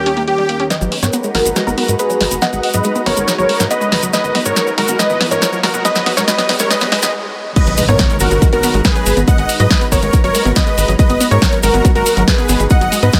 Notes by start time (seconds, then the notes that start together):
Already playing: D#2 D#3 A#3 C#4 G4
0.06 C#4, closed hi-hat
0.17 A#3, closed hi-hat
0.28 G4, closed hi-hat
0.38 G3, closed hi-hat
0.49 A#3, closed hi-hat
0.60 C#4, closed hi-hat
0.70 G#3 D#4 F#4 B4 D#5 A#5, snare, closed hi-hat, riser, maracas
0.81 G#1 F#3, closed hi-hat, maracas
0.92 G#3, open hi-hat
1.03 G#2 B3 A#4 C#5, snare, closed hi-hat, maracas
1.13 B3, closed hi-hat, maracas
1.24 G#3, closed hi-hat, maracas
1.35 G#1 F#4 A#4, snare, open hi-hat
1.45 G#1 F#3, closed hi-hat, maracas
1.56 G#3, snare, closed hi-hat, maracas
1.67 G#1 B3 F#4 A#4, closed hi-hat, maracas
1.78 B3, open hi-hat
1.88 G#2 G#3, closed hi-hat, maracas
1.99 G#4 B4, closed hi-hat, maracas
2.10 F#3, closed hi-hat, maracas
2.21 G#1 G#3, snare, open hi-hat
2.31 F#1 B3, closed hi-hat, maracas
2.42 B3 D#5 F#5, snare, closed hi-hat, maracas
2.53 G#1 G#3, closed hi-hat, maracas
2.63 open hi-hat
2.74 G#2 F#3 B4 D#5, closed hi-hat, maracas
2.84 G#3, closed hi-hat, maracas
2.95 B3, closed hi-hat, maracas
3.06 G#1 B3 A#4 C#5, snare, open hi-hat
3.17 G#1 G#3, closed hi-hat, maracas
3.28 snare, closed hi-hat, maracas
3.38 G#1 F#3 A#4 C#5, closed hi-hat, maracas
3.49 G#3, open hi-hat
3.60 G#2 B3, snare, closed hi-hat, maracas
3.71 B3 B4 D#5, closed hi-hat, maracas
3.81 G#3, closed hi-hat, maracas
3.92 G#1, snare, open hi-hat
4.03 F#1 F#3, closed hi-hat, maracas
4.13 G#3 B4 D#5, snare, closed hi-hat, maracas
4.24 G#1 B3, closed hi-hat, maracas
4.35 B3, snare, open hi-hat
4.45 G#2 G#3 A#4 C#5, closed hi-hat, maracas
4.56 snare, closed hi-hat, maracas
4.67 F#3, closed hi-hat, maracas
4.78 G#1 G#3 F#4 A#4, snare, open hi-hat
4.88 G#1 B3, closed hi-hat, maracas
4.99 G#3 B4 D#5, snare, closed hi-hat, maracas
5.10 G#1 B3, closed hi-hat, maracas
5.20 B3, snare, open hi-hat
5.31 G#2 G#3 A#4 C#5, closed hi-hat, maracas
5.42 snare, closed hi-hat, maracas
5.53 F#3, closed hi-hat, maracas
5.63 G#1 G#3 F#4 A#4, snare, open hi-hat
5.74 F#1 B3, closed hi-hat, maracas
5.85 G#3 B4 D#5, snare, closed hi-hat, maracas
5.95 G#1 B3, snare, closed hi-hat, maracas
6.06 B3, snare, open hi-hat
6.17 G#2 G#3 A#4 C#5, snare, closed hi-hat, maracas
6.28 G#3 B4 D#5, snare, closed hi-hat, maracas
6.38 B3, snare, closed hi-hat, maracas
6.49 G#1 B3, snare, open hi-hat
6.59 G#1 G#3 A#4 C#5, snare, closed hi-hat, maracas
6.70 G#3 B4 D#5, snare, closed hi-hat, maracas
6.80 G#1 B3, snare, closed hi-hat, maracas
6.92 G#3 B4 D#5, snare, open hi-hat
7.02 G#1 B3, snare, closed hi-hat, maracas
7.56 G#3 D#4 F#4 B4 D#5 A#5, kick, closed hi-hat, crash, impact, maracas
7.66 G#1 F#3, closed hi-hat, maracas
7.78 G#3, open hi-hat, maracas
7.88 G#2 B3 A#4 C#5, closed hi-hat, maracas
7.99 B3, kick, snare, closed hi-hat, maracas
8.10 G#3, closed hi-hat, maracas
8.20 G#1 F#4 A#4, open hi-hat, maracas
8.31 G#1 F#3, closed hi-hat, maracas
8.42 G#3, kick, closed hi-hat, maracas
8.53 G#1 B3 F#4 A#4, closed hi-hat, maracas
8.63 B3, open hi-hat, maracas
8.74 G#1 G#3, closed hi-hat, maracas
8.84 G#4 B4, kick, snare, closed hi-hat, maracas
8.96 F#3, closed hi-hat, maracas
9.06 G#1 G#3, open hi-hat, maracas
9.17 G#1 B3, closed hi-hat, maracas
9.28 B3 D#5 F#5, kick, closed hi-hat, maracas
9.38 G#1 G#3, closed hi-hat, maracas
9.49 open hi-hat, maracas
9.60 G#2 F#3 B4 D#5, closed hi-hat, maracas
9.70 G#3, kick, snare, closed hi-hat, maracas
9.81 B3, closed hi-hat, maracas
9.92 G#1 B3 A#4 C#5, kick, open hi-hat, maracas
10.02 G#1 G#3, closed hi-hat, maracas
10.13 kick, closed hi-hat, maracas
10.24 G#1 F#3 A#4 C#5, closed hi-hat, maracas
10.35 G#3, open hi-hat, maracas
10.45 G#1 B3, closed hi-hat, maracas
10.56 B3 B4 D#5, kick, snare, closed hi-hat, maracas
10.67 G#3, closed hi-hat, maracas
10.78 G#1, open hi-hat, maracas
10.88 G#1 F#3, closed hi-hat, maracas
10.99 G#3 B4 D#5, kick, closed hi-hat, maracas
11.09 G#1 B3, closed hi-hat, maracas
11.21 B3, open hi-hat, maracas
11.31 G#2 G#3 A#4 C#5, closed hi-hat, maracas
11.42 kick, snare, closed hi-hat, maracas
11.52 F#3, closed hi-hat, maracas
11.63 G#1 G#3 F#4 A#4, open hi-hat, maracas
11.74 G#1 B3, closed hi-hat, maracas
11.85 B3, kick, closed hi-hat, maracas
11.95 G#1 G#3 F#4 A#4, closed hi-hat, maracas
12.06 open hi-hat, maracas
12.17 G#1 F#3, closed hi-hat, maracas
12.28 G#3 G#4 B4, kick, snare, closed hi-hat, maracas
12.38 B3, closed hi-hat, maracas
12.49 G#1 B3, open hi-hat, maracas
12.60 G#1 G#3, closed hi-hat, maracas
12.70 D#5 F#5, kick, closed hi-hat, maracas
12.81 G#1 F#3, closed hi-hat, maracas
12.92 G#3, open hi-hat, maracas
13.02 G#2 B3 B4 D#5, closed hi-hat, maracas
13.13 B3, kick, snare, closed hi-hat, maracas